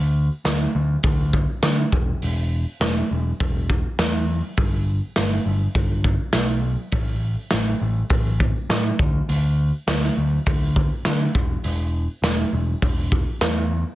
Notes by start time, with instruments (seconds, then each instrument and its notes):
Already playing: picked electric bass D2
0.45 picked electric bass D2, snare, open hi-hat
0.75 picked electric bass D2
1.03 picked electric bass D2, kick, open hi-hat
1.33 kick
1.63 picked electric bass D3, snare, open hi-hat
1.92 picked electric bass E1, kick
2.22 picked electric bass E1, open hi-hat
2.80 picked electric bass E1, snare, open hi-hat
3.11 picked electric bass E1
3.40 picked electric bass E1, kick, open hi-hat
3.70 kick
3.99 picked electric bass E2, snare, open hi-hat
4.57 picked electric bass G1, kick, open hi-hat
5.16 picked electric bass G1, snare, open hi-hat
5.45 picked electric bass G1
5.75 picked electric bass G1, kick, open hi-hat
6.04 kick
6.33 picked electric bass B1, snare, open hi-hat
6.92 picked electric bass A1, kick, open hi-hat
7.51 picked electric bass A1, snare, open hi-hat
7.81 picked electric bass A1
8.10 picked electric bass A1, kick, open hi-hat
8.40 kick
8.70 picked electric bass A2, snare, open hi-hat
8.99 picked electric bass D2, kick
9.29 picked electric bass D2, open hi-hat
9.87 picked electric bass D2, snare, open hi-hat
10.03 snare
10.17 picked electric bass D2
10.46 picked electric bass D2, kick, open hi-hat
10.76 kick
11.05 picked electric bass D3, snare, open hi-hat
11.35 picked electric bass E1, kick
11.64 picked electric bass E1, open hi-hat
12.22 picked electric bass E1, snare, open hi-hat
12.53 picked electric bass E1
12.82 picked electric bass E1, kick, open hi-hat
13.12 kick
13.41 picked electric bass E2, snare, open hi-hat